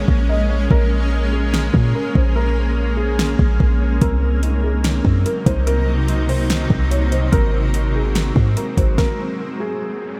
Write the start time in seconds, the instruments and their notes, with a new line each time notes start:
Already playing: ambient pad G#3 A#3 C#4, clean electric guitar C#4 G#4, felt piano C#5, downlifter
0.08 808-style bass A#1, clean electric guitar A#3, kick
0.29 felt piano D#5
0.49 clean electric guitar C#4, felt piano C#5
0.71 808-style bass A#1, clean electric guitar A#3, felt piano A#4, kick
0.91 clean electric guitar A#3
1.12 clean electric guitar C#4
1.32 felt piano G#4, clean electric guitar G#4
1.54 snare
1.74 808-style bass A#2, clean electric guitar A#3, kick
1.95 felt piano A#4
2.15 808-style bass A#1, clean electric guitar C#4, felt piano C5, kick
2.36 clean electric guitar A#3, felt piano A#4
2.57 clean electric guitar A#3
2.78 clean electric guitar C#4
2.97 felt piano G#4, clean electric guitar G#4
3.19 snare
3.39 808-style bass A#1, clean electric guitar A#3, kick
3.60 808-style bass A#1, kick
3.82 clean electric guitar C#4
4.01 808-style bass C2, ambient pad C3 F#3 D#4, clean electric guitar C4, felt piano A#4, kick, closed hi-hat
4.22 clean electric guitar C4
4.42 clean electric guitar D#4, closed hi-hat
4.63 felt piano G#4, clean electric guitar A#4
4.84 snare, closed hi-hat
5.05 808-style bass F#2, clean electric guitar C4, kick
5.26 felt piano A#4, closed hi-hat
5.46 808-style bass C2, clean electric guitar D#4, felt piano C5, kick, closed hi-hat
5.67 clean electric guitar C4, felt piano A#4, closed hi-hat
5.88 clean electric guitar C4
6.08 clean electric guitar D#4, closed hi-hat
6.29 clean electric guitar A#4, felt piano C5, open hi-hat
6.50 snare, closed hi-hat
6.70 808-style bass C2, clean electric guitar C4, kick
6.91 felt piano C#5, closed hi-hat
7.12 clean electric guitar D#4, felt piano C5, closed hi-hat
7.32 808-style bass G#1, ambient pad G#3 C4, clean electric guitar C4, felt piano A#4, kick, closed hi-hat
7.54 clean electric guitar C4
7.74 clean electric guitar F#4, closed hi-hat
7.95 felt piano G#4, clean electric guitar A#4
8.15 snare, closed hi-hat
8.36 808-style bass G#2, clean electric guitar C4, kick
8.57 felt piano A#4, closed hi-hat
8.77 808-style bass G#1, clean electric guitar F#4, felt piano C5, kick, closed hi-hat
8.98 felt piano A#4, kick, snare, riser
9.60 felt piano G#4